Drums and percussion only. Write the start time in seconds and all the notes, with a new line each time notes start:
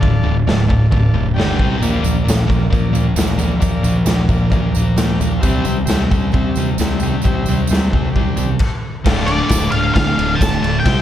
0.03 kick, floor tom
0.26 floor tom
0.48 snare, floor tom
0.70 kick, floor tom
0.92 kick, floor tom
1.15 floor tom
1.38 snare, floor tom
1.59 kick, floor tom
1.82 floor tom, tambourine
2.04 floor tom, tambourine
2.28 snare, floor tom, tambourine
2.50 kick, floor tom, tambourine
2.73 kick, floor tom, tambourine
2.95 floor tom, tambourine
3.16 snare, floor tom, tambourine
3.39 floor tom, tambourine
3.62 kick, floor tom, tambourine
3.84 floor tom, tambourine
4.06 snare, floor tom, tambourine
4.28 kick, floor tom, tambourine
4.50 kick, floor tom, tambourine
4.72 floor tom, tambourine
4.97 snare, floor tom, tambourine
5.20 floor tom, tambourine
5.43 kick, floor tom, tambourine
5.65 floor tom, tambourine
5.87 snare, floor tom, tambourine
6.12 kick, floor tom, tambourine
6.32 kick, floor tom, tambourine
6.56 floor tom, tambourine
6.78 snare, floor tom, tambourine
7.00 floor tom, tambourine
7.22 kick, tambourine
7.26 floor tom
7.46 floor tom, tambourine
7.67 tambourine
7.72 snare, floor tom
7.93 kick, floor tom
8.16 kick, floor tom
8.37 floor tom, tambourine
8.59 kick, crash
9.06 kick, snare, crash
9.28 ride
9.49 kick, snare, ride, tambourine
9.72 ride
9.96 kick, snare, ride
10.19 ride
10.41 kick, snare, ride, tambourine
10.64 ride
10.86 kick, snare, ride